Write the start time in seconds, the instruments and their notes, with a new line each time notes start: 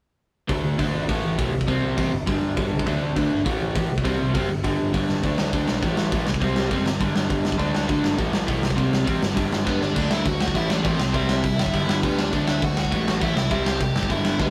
0.49 picked electric bass D2, overdriven electric guitar D3 A3 D4, kick, open hi-hat
0.64 picked electric bass D2
0.78 picked electric bass D2, overdriven electric guitar D3 A3 D4, kick, open hi-hat
0.94 picked electric bass G#1
1.08 picked electric bass A1, overdriven electric guitar A2 E3 A3, kick, open hi-hat
1.23 picked electric bass A1
1.38 picked electric bass B1, overdriven electric guitar A2 E3 A3, kick, open hi-hat
1.52 picked electric bass C2
1.61 kick
1.67 picked electric bass C2, overdriven electric guitar C3 G3 C4, kick, open hi-hat
1.83 picked electric bass C2
1.97 picked electric bass A1, overdriven electric guitar C3 G3 C4, kick, open hi-hat
2.13 picked electric bass G1
2.27 picked electric bass G1, overdriven electric guitar G2 D3 G3, kick, open hi-hat
2.43 picked electric bass G1
2.57 picked electric bass G1, overdriven electric guitar G2 D3 G3, kick, open hi-hat
2.72 picked electric bass C#2
2.79 kick
2.86 picked electric bass D2, overdriven electric guitar D3 A3 D4, kick, open hi-hat
3.02 picked electric bass D2
3.16 picked electric bass D2, overdriven electric guitar D3 A3 D4, kick, open hi-hat
3.32 picked electric bass G1
3.45 picked electric bass A1, overdriven electric guitar A2 E3 A3, kick, open hi-hat
3.61 picked electric bass A1
3.75 picked electric bass A1, overdriven electric guitar A2 E3 A3, kick, open hi-hat
3.90 picked electric bass C2
3.98 kick
4.04 picked electric bass C2, overdriven electric guitar C3 G3 C4, kick, open hi-hat
4.21 picked electric bass C2
4.34 picked electric bass F#1, overdriven electric guitar C3 G3 C4, kick, open hi-hat
4.50 picked electric bass G1
4.64 picked electric bass G1, overdriven electric guitar G2 D3 G3, kick, open hi-hat
4.80 picked electric bass G1
4.93 picked electric bass G1, overdriven electric guitar G2 D3 G3, kick, open hi-hat
5.09 picked electric bass G1, snare
5.23 picked electric bass D2, overdriven electric guitar D3 A3 D4, kick, open hi-hat
5.38 picked electric bass D2, snare
5.53 picked electric bass D2, overdriven electric guitar D3 A3 D4, kick, open hi-hat
5.68 picked electric bass B1, snare
5.82 picked electric bass A1, overdriven electric guitar A2 E3 A3, kick, open hi-hat
5.97 picked electric bass A1, snare
6.12 picked electric bass A1, overdriven electric guitar A2 E3 A3, kick, open hi-hat
6.27 picked electric bass C2, snare
6.34 kick
6.41 picked electric bass C2, overdriven electric guitar C3 G3 C4, kick, open hi-hat
6.56 picked electric bass C2, snare
6.71 picked electric bass F#1, overdriven electric guitar C3 G3 C4, kick, open hi-hat
6.86 picked electric bass G1, snare
7.00 picked electric bass G1, overdriven electric guitar G2 D3 G3, kick, open hi-hat
7.16 picked electric bass G1, snare
7.29 picked electric bass G1, overdriven electric guitar G2 D3 G3, kick, open hi-hat
7.45 picked electric bass G1, snare
7.52 kick
7.58 picked electric bass D2, overdriven electric guitar D3 A3 D4, kick, open hi-hat
7.74 picked electric bass D2, snare
7.88 picked electric bass D2, overdriven electric guitar D3 A3 D4, kick, open hi-hat
8.04 picked electric bass G1, snare
8.18 picked electric bass A1, overdriven electric guitar A2 E3 A3, kick, open hi-hat
8.33 picked electric bass A1, snare
8.47 picked electric bass B1, overdriven electric guitar A2 E3 A3, kick, open hi-hat
8.62 picked electric bass C2, snare
8.70 kick
8.76 picked electric bass C2, overdriven electric guitar C3 G3 C4, kick, open hi-hat
8.92 picked electric bass C2, snare
9.05 picked electric bass A1, overdriven electric guitar C3 G3 C4, kick, open hi-hat
9.22 picked electric bass G1, snare
9.35 picked electric bass G1, overdriven electric guitar G2 D3 G3, kick, open hi-hat
9.52 picked electric bass G1, snare
9.65 picked electric bass G1, overdriven electric guitar G2 D3 G3, lead electric guitar B3 B4, kick, snare
9.82 picked electric bass G1, lead electric guitar D4 D5, snare
9.94 picked electric bass D2, overdriven electric guitar D3 A3 D4, kick, crash
10.11 picked electric bass D2, lead electric guitar E4 E5, snare
10.24 picked electric bass D2, overdriven electric guitar D3 A3, lead electric guitar F#4 F#5, kick, open hi-hat
10.40 picked electric bass D2, lead electric guitar F#4 F#5, snare
10.48 kick
10.54 picked electric bass A1, overdriven electric guitar A2 E3 A3, lead electric guitar E4 E5, kick, open hi-hat
10.70 picked electric bass A1, lead electric guitar D4 D5, snare
10.83 picked electric bass A1, overdriven electric guitar A2 E3 A3, lead electric guitar C4 C5, kick, open hi-hat
10.99 picked electric bass C2, snare
11.13 picked electric bass C2, overdriven electric guitar C3 G3 C4, lead electric guitar E4 E5, kick, open hi-hat
11.29 snare
11.44 picked electric bass C2, overdriven electric guitar C3 G3, kick, open hi-hat
11.58 picked electric bass G1, snare
11.66 kick
11.72 picked electric bass G1, overdriven electric guitar G2 D3 G3, kick, open hi-hat
11.88 picked electric bass G1, snare
12.03 picked electric bass D2, overdriven electric guitar G2 D3 G3, lead electric guitar B3 B4, kick, open hi-hat
12.19 lead electric guitar D4 D5, snare
12.32 picked electric bass D2, overdriven electric guitar D3 A3 D4, kick, open hi-hat
12.47 picked electric bass D2, lead electric guitar E4 E5, snare
12.62 picked electric bass D2, overdriven electric guitar D3 A3, lead electric guitar F#4 F#5, kick, open hi-hat
12.77 picked electric bass D2, lead electric guitar F#4 F#5, snare
12.85 kick
12.91 picked electric bass A1, overdriven electric guitar A2 E3 A3, kick, open hi-hat
13.06 picked electric bass A1, snare
13.21 picked electric bass A1, overdriven electric guitar A2 E3 A3, lead electric guitar E4 E5, kick, open hi-hat
13.36 picked electric bass C2, snare
13.50 picked electric bass C2, overdriven electric guitar C3 G3 C4, lead electric guitar E4 E5, kick, open hi-hat
13.66 lead electric guitar G4 G5, snare
13.80 picked electric bass C2, overdriven electric guitar C3 G3, lead electric guitar G4 G5, kick, open hi-hat
13.95 picked electric bass G1, snare
14.03 kick
14.09 picked electric bass G1, overdriven electric guitar G2 D3 G3, lead electric guitar E4 E5, kick, open hi-hat
14.25 picked electric bass G1, snare
14.39 picked electric bass D2, overdriven electric guitar G2 D3 G3, lead electric guitar B3 B4, kick, snare